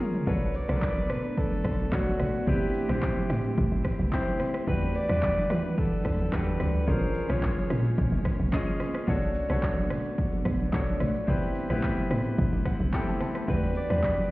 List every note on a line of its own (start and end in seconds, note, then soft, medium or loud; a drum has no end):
0.00 0.29 C#4 medium
0.00 0.29 F4 medium
0.00 0.29 G#4 medium
0.00 0.17 A#4 loud
0.00 0.29 C5 medium
0.00 0.29 C#5 loud
0.00 mid tom loud
0.00 open hi-hat medium
0.00 shaker medium
0.14 floor tom loud
0.14 shaker medium
0.26 0.65 B1 loud
0.26 4.64 A3 medium
0.26 2.45 B3 medium
0.26 0.60 D4 medium
0.26 2.45 D4 medium
0.26 0.60 F#4 medium
0.26 0.61 A4 medium
0.26 0.57 B4 loud
0.26 0.61 C#5 medium
0.26 kick loud
0.26 low conga medium
0.26 shaker medium
0.41 shaker medium
0.54 1.12 D5 loud
0.54 open hi-hat medium
0.54 shaker medium
0.68 1.11 B1 loud
0.68 1.56 D4 medium
0.68 1.57 F#4 medium
0.68 1.57 A4 medium
0.68 0.76 A#4 medium
0.68 cross-stick loud
0.68 high conga medium
0.68 shaker medium
0.77 1.61 B4 medium
0.82 kick loud
0.82 clap medium
0.82 shaker medium
0.96 high conga medium
0.96 shaker medium
1.10 1.61 B2 loud
1.10 1.40 B4 loud
1.10 cross-stick loud
1.10 open hi-hat medium
1.10 low conga medium
1.10 shaker loud
1.24 shaker medium
1.37 1.95 A4 loud
1.37 kick loud
1.37 shaker medium
1.52 high conga medium
1.52 shaker medium
1.65 1.90 B1 medium
1.65 kick loud
1.65 cross-stick loud
1.65 open hi-hat medium
1.65 shaker medium
1.79 high conga medium
1.79 shaker medium
1.91 2.17 B1 medium
1.91 2.36 D4 medium
1.91 2.37 F#4 medium
1.91 2.48 F#4 loud
1.91 2.37 A4 medium
1.91 2.38 C#5 medium
1.91 kick loud
1.91 clap medium
1.91 shaker medium
2.07 high conga medium
2.07 shaker medium
2.20 2.45 A1 loud
2.20 cross-stick loud
2.20 open hi-hat medium
2.20 low conga medium
2.20 shaker loud
2.34 shaker medium
2.46 2.85 A1 loud
2.46 6.84 G3 medium
2.46 2.80 C4 medium
2.46 4.65 C4 medium
2.46 2.81 E4 medium
2.46 2.81 G4 medium
2.46 2.87 G4 loud
2.46 2.81 B4 medium
2.46 kick loud
2.46 low conga medium
2.46 shaker medium
2.61 shaker medium
2.74 open hi-hat medium
2.74 shaker loud
2.88 3.26 A1 medium
2.88 3.76 C4 medium
2.88 3.77 E4 medium
2.88 3.77 G4 medium
2.88 3.68 G4 medium
2.88 3.78 C5 medium
2.88 cross-stick loud
2.88 high conga medium
2.88 shaker medium
3.02 kick loud
3.02 clap medium
3.02 shaker medium
3.17 high conga medium
3.17 shaker medium
3.30 3.55 A2 loud
3.30 cross-stick loud
3.30 open hi-hat medium
3.30 low conga medium
3.30 shaker loud
3.44 shaker medium
3.58 3.71 A1 loud
3.58 kick loud
3.58 shaker medium
3.72 3.97 A1 medium
3.72 high conga medium
3.72 shaker medium
3.85 kick medium
3.85 cross-stick loud
3.85 open hi-hat medium
3.85 shaker medium
3.99 4.11 B1 loud
3.99 high conga medium
3.99 shaker medium
4.11 4.56 C4 medium
4.11 4.57 E4 medium
4.11 4.57 G4 medium
4.11 4.58 C5 loud
4.11 kick loud
4.11 clap medium
4.11 shaker medium
4.27 high conga medium
4.27 shaker medium
4.40 cross-stick loud
4.40 open hi-hat medium
4.40 low conga medium
4.40 shaker loud
4.54 cross-stick loud
4.54 shaker medium
4.67 5.05 E2 loud
4.67 6.85 E3 medium
4.67 5.00 D4 medium
4.67 6.85 D4 medium
4.67 5.01 F#4 medium
4.67 5.01 G4 medium
4.67 4.97 B4 loud
4.67 5.02 B4 medium
4.67 6.85 F#5 medium
4.67 kick loud
4.67 low conga medium
4.67 shaker medium
4.81 shaker medium
4.94 5.50 D5 loud
4.94 open hi-hat medium
4.94 shaker loud
5.08 5.46 E2 medium
5.08 5.97 D4 medium
5.08 5.97 F#4 medium
5.08 5.98 G4 medium
5.08 5.98 B4 medium
5.08 cross-stick loud
5.08 high conga medium
5.08 shaker medium
5.23 kick loud
5.23 clap medium
5.23 shaker medium
5.37 high conga medium
5.37 shaker medium
5.50 6.01 E3 loud
5.50 5.80 B4 loud
5.50 cross-stick loud
5.50 open hi-hat medium
5.50 low conga medium
5.50 shaker loud
5.64 shaker medium
5.78 6.35 A4 loud
5.78 kick loud
5.78 shaker medium
5.92 high conga medium
5.92 shaker medium
6.05 6.30 E2 medium
6.05 kick loud
6.05 cross-stick loud
6.05 open hi-hat soft
6.05 shaker medium
6.19 high conga medium
6.19 shaker medium
6.32 6.58 E2 medium
6.32 6.77 D4 medium
6.32 6.77 F#4 medium
6.32 6.77 G4 medium
6.32 6.78 A4 medium
6.32 6.90 B4 loud
6.32 kick loud
6.32 clap medium
6.32 shaker medium
6.47 high conga medium
6.47 shaker medium
6.60 6.85 D2 loud
6.60 cross-stick loud
6.60 open hi-hat medium
6.60 low conga medium
6.60 shaker loud
6.75 shaker medium
6.87 7.26 A#1 loud
6.87 9.06 G#3 medium
6.87 9.06 A#3 medium
6.87 7.20 C#4 medium
6.87 9.06 C#4 medium
6.87 7.21 F4 medium
6.87 7.21 G#4 medium
6.87 7.32 A#4 loud
6.87 7.22 C5 medium
6.87 kick loud
6.87 low conga medium
6.87 shaker medium
7.02 shaker medium
7.15 open hi-hat medium
7.15 shaker loud
7.28 7.66 A#1 medium
7.28 8.17 C#4 medium
7.28 8.17 F4 medium
7.28 8.18 G#4 medium
7.28 8.12 C#5 loud
7.28 8.18 C#5 medium
7.28 cross-stick loud
7.28 high conga medium
7.28 shaker medium
7.43 kick loud
7.43 clap medium
7.43 shaker medium
7.57 high conga medium
7.57 shaker medium
7.70 7.95 A#2 loud
7.70 cross-stick loud
7.70 open hi-hat medium
7.70 low conga medium
7.70 shaker loud
7.84 shaker medium
7.98 8.11 A#1 loud
7.98 kick loud
7.98 shaker medium
8.12 8.37 A#1 loud
8.12 high conga medium
8.12 shaker medium
8.25 kick loud
8.25 cross-stick loud
8.25 open hi-hat medium
8.25 shaker medium
8.39 8.52 B1 loud
8.39 high conga medium
8.39 shaker medium
8.52 8.97 C#4 medium
8.52 8.97 F4 medium
8.52 8.98 G#4 medium
8.52 8.98 D#5 loud
8.52 kick loud
8.52 clap medium
8.52 shaker medium
8.67 high conga medium
8.67 shaker medium
8.80 cross-stick loud
8.80 open hi-hat medium
8.80 low conga medium
8.80 shaker loud
8.95 cross-stick loud
8.95 shaker medium
9.07 9.46 B1 loud
9.07 13.44 A3 medium
9.07 11.26 B3 medium
9.07 9.41 D4 loud
9.07 11.26 D4 medium
9.07 9.41 F#4 medium
9.07 9.41 A4 medium
9.07 9.42 C#5 loud
9.07 kick loud
9.07 low conga medium
9.07 shaker medium
9.22 shaker medium
9.35 open hi-hat medium
9.35 shaker loud
9.49 9.92 B1 medium
9.49 10.37 D4 medium
9.49 10.37 F#4 medium
9.49 10.38 A4 medium
9.49 10.38 C#5 loud
9.49 cross-stick loud
9.49 high conga medium
9.49 shaker medium
9.63 kick loud
9.63 clap medium
9.63 shaker medium
9.77 high conga medium
9.77 shaker medium
9.90 10.41 B2 loud
9.90 cross-stick loud
9.90 open hi-hat medium
9.90 low conga medium
9.90 shaker loud
10.05 shaker medium
10.18 kick loud
10.18 shaker medium
10.32 high conga medium
10.32 shaker medium
10.45 10.70 B1 medium
10.45 kick medium
10.45 cross-stick loud
10.45 open hi-hat medium
10.45 shaker medium
10.60 high conga medium
10.60 shaker medium
10.72 10.98 B1 loud
10.72 11.17 D4 medium
10.72 11.17 F#4 medium
10.72 11.18 A4 medium
10.72 11.18 C#5 loud
10.72 kick loud
10.72 clap medium
10.72 shaker medium
10.87 high conga medium
10.87 shaker medium
11.00 11.25 A1 loud
11.00 cross-stick loud
11.00 open hi-hat medium
11.00 low conga medium
11.00 shaker medium
11.15 shaker medium
11.27 11.66 A1 loud
11.27 14.31 G3 medium
11.27 11.61 C4 loud
11.27 13.46 C4 medium
11.27 11.61 E4 medium
11.27 11.62 G4 medium
11.27 11.62 B4 loud
11.27 kick loud
11.27 low conga medium
11.27 shaker medium
11.42 shaker medium
11.55 open hi-hat medium
11.55 shaker loud
11.69 12.07 A1 loud
11.69 11.76 B3 medium
11.69 12.58 E4 medium
11.69 12.58 G4 medium
11.69 12.59 B4 loud
11.69 cross-stick loud
11.69 high conga medium
11.69 shaker medium
11.75 12.60 C4 medium
11.83 kick loud
11.83 clap medium
11.83 shaker medium
11.97 high conga medium
11.97 shaker medium
12.11 12.36 A2 medium
12.11 cross-stick loud
12.11 open hi-hat medium
12.11 low conga medium
12.11 shaker loud
12.25 shaker medium
12.38 12.51 A1 loud
12.38 kick loud
12.38 shaker medium
12.52 12.77 A1 medium
12.52 high conga medium
12.52 shaker medium
12.65 12.91 F#5 medium
12.65 kick loud
12.65 cross-stick loud
12.65 open hi-hat medium
12.65 shaker medium
12.80 12.92 B1 medium
12.80 high conga medium
12.80 shaker medium
12.92 12.99 B3 medium
12.92 13.38 E4 medium
12.92 13.38 G4 medium
12.92 13.38 A4 loud
12.92 13.07 G5 medium
12.92 kick loud
12.92 clap medium
12.92 shaker medium
12.99 13.40 C4 medium
13.07 13.20 A5 medium
13.07 high conga medium
13.07 shaker medium
13.21 13.46 A5 medium
13.21 cross-stick loud
13.21 open hi-hat medium
13.21 low conga medium
13.21 shaker medium
13.35 cross-stick loud
13.35 shaker medium
13.47 13.86 E2 loud
13.47 14.31 E3 medium
13.47 13.81 D4 medium
13.47 14.31 D4 medium
13.47 13.81 F#4 medium
13.47 13.82 G4 medium
13.47 13.74 B4 loud
13.47 13.82 B4 medium
13.47 14.31 F#5 medium
13.47 kick loud
13.47 low conga medium
13.47 shaker medium
13.62 shaker medium
13.75 14.27 D5 loud
13.75 open hi-hat medium
13.75 shaker loud
13.89 14.27 E2 medium
13.89 14.31 D4 medium
13.89 14.31 F#4 medium
13.89 14.31 G4 medium
13.89 14.31 B4 medium
13.89 cross-stick loud
13.89 high conga medium
13.89 shaker medium
14.03 kick loud
14.03 clap medium
14.03 shaker medium
14.17 high conga medium
14.17 shaker medium